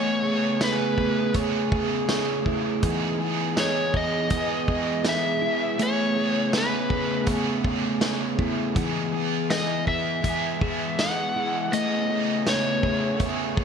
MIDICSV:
0, 0, Header, 1, 6, 480
1, 0, Start_track
1, 0, Tempo, 740741
1, 1834, Time_signature, 4, 2, 24, 8
1, 8841, End_track
2, 0, Start_track
2, 0, Title_t, "Electric slide guitar"
2, 0, Program_c, 0, 29
2, 0, Note_on_c, 0, 73, 101
2, 414, Note_on_c, 0, 71, 77
2, 418, Note_off_c, 0, 73, 0
2, 858, Note_off_c, 0, 71, 0
2, 2333, Note_on_c, 0, 73, 90
2, 2548, Note_off_c, 0, 73, 0
2, 2570, Note_on_c, 0, 75, 101
2, 3296, Note_off_c, 0, 75, 0
2, 3299, Note_on_c, 0, 76, 103
2, 3778, Note_on_c, 0, 73, 109
2, 3781, Note_off_c, 0, 76, 0
2, 4221, Note_off_c, 0, 73, 0
2, 4262, Note_on_c, 0, 71, 82
2, 4702, Note_off_c, 0, 71, 0
2, 6165, Note_on_c, 0, 75, 97
2, 6401, Note_off_c, 0, 75, 0
2, 6403, Note_on_c, 0, 76, 96
2, 7128, Note_on_c, 0, 78, 105
2, 7141, Note_off_c, 0, 76, 0
2, 7606, Note_on_c, 0, 75, 108
2, 7616, Note_off_c, 0, 78, 0
2, 8092, Note_off_c, 0, 75, 0
2, 8094, Note_on_c, 0, 73, 82
2, 8539, Note_off_c, 0, 73, 0
2, 8841, End_track
3, 0, Start_track
3, 0, Title_t, "Clean electric guitar"
3, 0, Program_c, 1, 27
3, 0, Note_on_c, 1, 57, 92
3, 0, Note_on_c, 1, 59, 60
3, 0, Note_on_c, 1, 68, 68
3, 149, Note_off_c, 1, 68, 0
3, 152, Note_on_c, 1, 68, 53
3, 392, Note_on_c, 1, 73, 68
3, 411, Note_off_c, 1, 59, 0
3, 635, Note_off_c, 1, 68, 0
3, 637, Note_on_c, 1, 68, 52
3, 868, Note_off_c, 1, 73, 0
3, 876, Note_on_c, 1, 73, 72
3, 1112, Note_off_c, 1, 68, 0
3, 1114, Note_on_c, 1, 68, 58
3, 1347, Note_off_c, 1, 73, 0
3, 1355, Note_on_c, 1, 73, 67
3, 1594, Note_on_c, 1, 64, 62
3, 1831, Note_on_c, 1, 52, 86
3, 1834, Note_off_c, 1, 57, 0
3, 1883, Note_off_c, 1, 73, 0
3, 2069, Note_off_c, 1, 68, 0
3, 2072, Note_on_c, 1, 68, 58
3, 2308, Note_on_c, 1, 75, 65
3, 2327, Note_off_c, 1, 64, 0
3, 2548, Note_off_c, 1, 68, 0
3, 2551, Note_on_c, 1, 68, 58
3, 2781, Note_off_c, 1, 75, 0
3, 2789, Note_on_c, 1, 75, 67
3, 3028, Note_off_c, 1, 68, 0
3, 3030, Note_on_c, 1, 68, 57
3, 3272, Note_off_c, 1, 75, 0
3, 3509, Note_on_c, 1, 64, 64
3, 3752, Note_on_c, 1, 57, 91
3, 3988, Note_off_c, 1, 68, 0
3, 3991, Note_on_c, 1, 68, 54
3, 4099, Note_off_c, 1, 52, 0
3, 4233, Note_on_c, 1, 73, 67
3, 4465, Note_off_c, 1, 68, 0
3, 4467, Note_on_c, 1, 68, 57
3, 4706, Note_off_c, 1, 73, 0
3, 4714, Note_on_c, 1, 73, 67
3, 4950, Note_off_c, 1, 68, 0
3, 4953, Note_on_c, 1, 68, 52
3, 5187, Note_off_c, 1, 73, 0
3, 5195, Note_on_c, 1, 73, 72
3, 5432, Note_off_c, 1, 64, 0
3, 5435, Note_on_c, 1, 64, 64
3, 5674, Note_off_c, 1, 57, 0
3, 5675, Note_on_c, 1, 52, 82
3, 5723, Note_off_c, 1, 73, 0
3, 5912, Note_off_c, 1, 68, 0
3, 5915, Note_on_c, 1, 68, 57
3, 6393, Note_off_c, 1, 68, 0
3, 6396, Note_on_c, 1, 68, 60
3, 6877, Note_off_c, 1, 68, 0
3, 6880, Note_on_c, 1, 68, 58
3, 7121, Note_on_c, 1, 75, 63
3, 7140, Note_off_c, 1, 64, 0
3, 7358, Note_on_c, 1, 64, 63
3, 7599, Note_on_c, 1, 57, 90
3, 7646, Note_off_c, 1, 75, 0
3, 7837, Note_off_c, 1, 68, 0
3, 7840, Note_on_c, 1, 68, 52
3, 7943, Note_off_c, 1, 52, 0
3, 8078, Note_on_c, 1, 73, 67
3, 8312, Note_off_c, 1, 68, 0
3, 8315, Note_on_c, 1, 68, 57
3, 8545, Note_off_c, 1, 73, 0
3, 8553, Note_on_c, 1, 73, 69
3, 8791, Note_off_c, 1, 68, 0
3, 8793, Note_on_c, 1, 68, 65
3, 8841, Note_off_c, 1, 57, 0
3, 8841, Note_off_c, 1, 64, 0
3, 8841, Note_off_c, 1, 68, 0
3, 8841, Note_off_c, 1, 73, 0
3, 8841, End_track
4, 0, Start_track
4, 0, Title_t, "Overdriven electric guitar"
4, 0, Program_c, 2, 29
4, 0, Note_on_c, 2, 57, 72
4, 0, Note_on_c, 2, 59, 82
4, 0, Note_on_c, 2, 61, 93
4, 0, Note_on_c, 2, 68, 79
4, 140, Note_off_c, 2, 68, 0
4, 148, Note_on_c, 2, 68, 52
4, 154, Note_off_c, 2, 57, 0
4, 159, Note_off_c, 2, 59, 0
4, 159, Note_off_c, 2, 61, 0
4, 166, Note_on_c, 2, 61, 48
4, 177, Note_on_c, 2, 59, 37
4, 860, Note_on_c, 2, 57, 65
4, 879, Note_off_c, 2, 59, 0
4, 879, Note_off_c, 2, 68, 0
4, 880, Note_off_c, 2, 61, 0
4, 882, Note_on_c, 2, 59, 60
4, 900, Note_on_c, 2, 61, 79
4, 915, Note_on_c, 2, 68, 72
4, 1827, Note_off_c, 2, 57, 0
4, 1830, Note_on_c, 2, 52, 83
4, 1836, Note_on_c, 2, 56, 90
4, 1838, Note_off_c, 2, 59, 0
4, 1840, Note_on_c, 2, 59, 102
4, 1841, Note_off_c, 2, 61, 0
4, 1843, Note_off_c, 2, 68, 0
4, 1843, Note_on_c, 2, 63, 97
4, 1845, Note_on_c, 2, 68, 96
4, 2060, Note_off_c, 2, 68, 0
4, 2068, Note_on_c, 2, 68, 58
4, 2073, Note_off_c, 2, 52, 0
4, 2075, Note_off_c, 2, 56, 0
4, 2077, Note_off_c, 2, 63, 0
4, 2078, Note_off_c, 2, 59, 0
4, 2084, Note_on_c, 2, 63, 44
4, 2096, Note_on_c, 2, 59, 51
4, 2778, Note_on_c, 2, 56, 74
4, 2799, Note_off_c, 2, 59, 0
4, 2800, Note_off_c, 2, 63, 0
4, 2801, Note_on_c, 2, 59, 69
4, 2834, Note_off_c, 2, 68, 0
4, 2837, Note_on_c, 2, 68, 62
4, 3744, Note_off_c, 2, 56, 0
4, 3746, Note_on_c, 2, 57, 75
4, 3753, Note_off_c, 2, 59, 0
4, 3756, Note_on_c, 2, 59, 79
4, 3759, Note_off_c, 2, 68, 0
4, 3760, Note_on_c, 2, 61, 82
4, 3762, Note_on_c, 2, 68, 91
4, 3981, Note_off_c, 2, 68, 0
4, 3989, Note_on_c, 2, 68, 52
4, 3991, Note_off_c, 2, 57, 0
4, 3993, Note_off_c, 2, 61, 0
4, 3995, Note_off_c, 2, 59, 0
4, 4001, Note_on_c, 2, 61, 49
4, 4012, Note_on_c, 2, 59, 40
4, 4703, Note_on_c, 2, 57, 60
4, 4718, Note_off_c, 2, 61, 0
4, 4721, Note_off_c, 2, 59, 0
4, 4722, Note_off_c, 2, 68, 0
4, 4724, Note_on_c, 2, 59, 59
4, 4740, Note_on_c, 2, 61, 68
4, 4755, Note_on_c, 2, 68, 64
4, 5667, Note_on_c, 2, 52, 87
4, 5669, Note_off_c, 2, 57, 0
4, 5672, Note_on_c, 2, 56, 91
4, 5675, Note_off_c, 2, 59, 0
4, 5677, Note_on_c, 2, 59, 100
4, 5678, Note_off_c, 2, 61, 0
4, 5680, Note_on_c, 2, 63, 93
4, 5682, Note_off_c, 2, 68, 0
4, 5685, Note_on_c, 2, 68, 83
4, 5905, Note_off_c, 2, 68, 0
4, 5911, Note_off_c, 2, 52, 0
4, 5913, Note_off_c, 2, 56, 0
4, 5913, Note_on_c, 2, 68, 56
4, 5916, Note_off_c, 2, 59, 0
4, 5918, Note_off_c, 2, 63, 0
4, 5938, Note_on_c, 2, 59, 49
4, 6617, Note_on_c, 2, 56, 67
4, 6637, Note_off_c, 2, 59, 0
4, 6640, Note_on_c, 2, 59, 61
4, 6669, Note_off_c, 2, 68, 0
4, 6671, Note_on_c, 2, 68, 67
4, 7582, Note_off_c, 2, 56, 0
4, 7584, Note_on_c, 2, 57, 78
4, 7588, Note_off_c, 2, 59, 0
4, 7591, Note_on_c, 2, 59, 73
4, 7599, Note_off_c, 2, 68, 0
4, 7599, Note_on_c, 2, 61, 85
4, 7602, Note_on_c, 2, 68, 79
4, 7813, Note_off_c, 2, 68, 0
4, 7821, Note_on_c, 2, 68, 51
4, 7825, Note_off_c, 2, 61, 0
4, 7829, Note_off_c, 2, 57, 0
4, 7833, Note_off_c, 2, 59, 0
4, 7833, Note_on_c, 2, 61, 51
4, 7843, Note_on_c, 2, 59, 47
4, 8533, Note_on_c, 2, 57, 66
4, 8552, Note_off_c, 2, 59, 0
4, 8552, Note_off_c, 2, 68, 0
4, 8554, Note_off_c, 2, 61, 0
4, 8557, Note_on_c, 2, 59, 66
4, 8574, Note_on_c, 2, 61, 59
4, 8588, Note_on_c, 2, 68, 65
4, 8841, Note_off_c, 2, 57, 0
4, 8841, Note_off_c, 2, 59, 0
4, 8841, Note_off_c, 2, 61, 0
4, 8841, Note_off_c, 2, 68, 0
4, 8841, End_track
5, 0, Start_track
5, 0, Title_t, "Ambient pad"
5, 0, Program_c, 3, 92
5, 0, Note_on_c, 3, 49, 66
5, 0, Note_on_c, 3, 57, 72
5, 0, Note_on_c, 3, 59, 68
5, 0, Note_on_c, 3, 68, 81
5, 1815, Note_off_c, 3, 49, 0
5, 1815, Note_off_c, 3, 59, 0
5, 1818, Note_off_c, 3, 57, 0
5, 1830, Note_on_c, 3, 52, 76
5, 1833, Note_on_c, 3, 59, 68
5, 3733, Note_off_c, 3, 52, 0
5, 3755, Note_on_c, 3, 49, 72
5, 3757, Note_on_c, 3, 57, 72
5, 5656, Note_off_c, 3, 49, 0
5, 5657, Note_off_c, 3, 57, 0
5, 5678, Note_on_c, 3, 52, 75
5, 7568, Note_off_c, 3, 59, 0
5, 7577, Note_off_c, 3, 52, 0
5, 7602, Note_on_c, 3, 49, 69
5, 7603, Note_on_c, 3, 57, 68
5, 7604, Note_on_c, 3, 59, 73
5, 8841, Note_off_c, 3, 49, 0
5, 8841, Note_off_c, 3, 57, 0
5, 8841, Note_off_c, 3, 59, 0
5, 8841, Note_off_c, 3, 68, 0
5, 8841, End_track
6, 0, Start_track
6, 0, Title_t, "Drums"
6, 394, Note_on_c, 9, 54, 76
6, 395, Note_on_c, 9, 38, 127
6, 397, Note_on_c, 9, 42, 76
6, 459, Note_off_c, 9, 38, 0
6, 459, Note_off_c, 9, 54, 0
6, 462, Note_off_c, 9, 42, 0
6, 633, Note_on_c, 9, 36, 73
6, 698, Note_off_c, 9, 36, 0
6, 870, Note_on_c, 9, 42, 75
6, 873, Note_on_c, 9, 36, 86
6, 935, Note_off_c, 9, 42, 0
6, 938, Note_off_c, 9, 36, 0
6, 1114, Note_on_c, 9, 36, 102
6, 1179, Note_off_c, 9, 36, 0
6, 1352, Note_on_c, 9, 38, 112
6, 1352, Note_on_c, 9, 54, 65
6, 1354, Note_on_c, 9, 42, 71
6, 1417, Note_off_c, 9, 38, 0
6, 1417, Note_off_c, 9, 54, 0
6, 1418, Note_off_c, 9, 42, 0
6, 1593, Note_on_c, 9, 36, 78
6, 1658, Note_off_c, 9, 36, 0
6, 1832, Note_on_c, 9, 42, 70
6, 1834, Note_on_c, 9, 36, 103
6, 1897, Note_off_c, 9, 42, 0
6, 1899, Note_off_c, 9, 36, 0
6, 2313, Note_on_c, 9, 38, 124
6, 2313, Note_on_c, 9, 54, 71
6, 2316, Note_on_c, 9, 42, 73
6, 2378, Note_off_c, 9, 38, 0
6, 2378, Note_off_c, 9, 54, 0
6, 2381, Note_off_c, 9, 42, 0
6, 2552, Note_on_c, 9, 36, 81
6, 2617, Note_off_c, 9, 36, 0
6, 2788, Note_on_c, 9, 42, 67
6, 2791, Note_on_c, 9, 36, 92
6, 2853, Note_off_c, 9, 42, 0
6, 2856, Note_off_c, 9, 36, 0
6, 3033, Note_on_c, 9, 36, 90
6, 3098, Note_off_c, 9, 36, 0
6, 3269, Note_on_c, 9, 38, 102
6, 3269, Note_on_c, 9, 54, 68
6, 3271, Note_on_c, 9, 42, 80
6, 3334, Note_off_c, 9, 38, 0
6, 3334, Note_off_c, 9, 54, 0
6, 3335, Note_off_c, 9, 42, 0
6, 3754, Note_on_c, 9, 42, 70
6, 3819, Note_off_c, 9, 42, 0
6, 4233, Note_on_c, 9, 38, 116
6, 4233, Note_on_c, 9, 54, 65
6, 4236, Note_on_c, 9, 42, 76
6, 4297, Note_off_c, 9, 54, 0
6, 4298, Note_off_c, 9, 38, 0
6, 4301, Note_off_c, 9, 42, 0
6, 4472, Note_on_c, 9, 36, 78
6, 4537, Note_off_c, 9, 36, 0
6, 4709, Note_on_c, 9, 42, 74
6, 4712, Note_on_c, 9, 36, 93
6, 4774, Note_off_c, 9, 42, 0
6, 4777, Note_off_c, 9, 36, 0
6, 4954, Note_on_c, 9, 36, 97
6, 5019, Note_off_c, 9, 36, 0
6, 5192, Note_on_c, 9, 38, 110
6, 5192, Note_on_c, 9, 54, 69
6, 5193, Note_on_c, 9, 42, 74
6, 5256, Note_off_c, 9, 54, 0
6, 5257, Note_off_c, 9, 38, 0
6, 5258, Note_off_c, 9, 42, 0
6, 5435, Note_on_c, 9, 36, 95
6, 5500, Note_off_c, 9, 36, 0
6, 5677, Note_on_c, 9, 36, 114
6, 5677, Note_on_c, 9, 42, 68
6, 5741, Note_off_c, 9, 36, 0
6, 5742, Note_off_c, 9, 42, 0
6, 6158, Note_on_c, 9, 54, 73
6, 6159, Note_on_c, 9, 38, 123
6, 6162, Note_on_c, 9, 42, 67
6, 6223, Note_off_c, 9, 54, 0
6, 6224, Note_off_c, 9, 38, 0
6, 6226, Note_off_c, 9, 42, 0
6, 6397, Note_on_c, 9, 36, 76
6, 6461, Note_off_c, 9, 36, 0
6, 6636, Note_on_c, 9, 36, 85
6, 6637, Note_on_c, 9, 42, 74
6, 6701, Note_off_c, 9, 36, 0
6, 6701, Note_off_c, 9, 42, 0
6, 6878, Note_on_c, 9, 36, 97
6, 6943, Note_off_c, 9, 36, 0
6, 7120, Note_on_c, 9, 38, 99
6, 7120, Note_on_c, 9, 54, 69
6, 7121, Note_on_c, 9, 42, 71
6, 7185, Note_off_c, 9, 38, 0
6, 7185, Note_off_c, 9, 54, 0
6, 7186, Note_off_c, 9, 42, 0
6, 7601, Note_on_c, 9, 42, 68
6, 7665, Note_off_c, 9, 42, 0
6, 8077, Note_on_c, 9, 54, 76
6, 8078, Note_on_c, 9, 38, 113
6, 8081, Note_on_c, 9, 42, 76
6, 8142, Note_off_c, 9, 54, 0
6, 8143, Note_off_c, 9, 38, 0
6, 8145, Note_off_c, 9, 42, 0
6, 8316, Note_on_c, 9, 36, 80
6, 8380, Note_off_c, 9, 36, 0
6, 8552, Note_on_c, 9, 42, 73
6, 8554, Note_on_c, 9, 36, 91
6, 8617, Note_off_c, 9, 42, 0
6, 8619, Note_off_c, 9, 36, 0
6, 8796, Note_on_c, 9, 36, 102
6, 8841, Note_off_c, 9, 36, 0
6, 8841, End_track
0, 0, End_of_file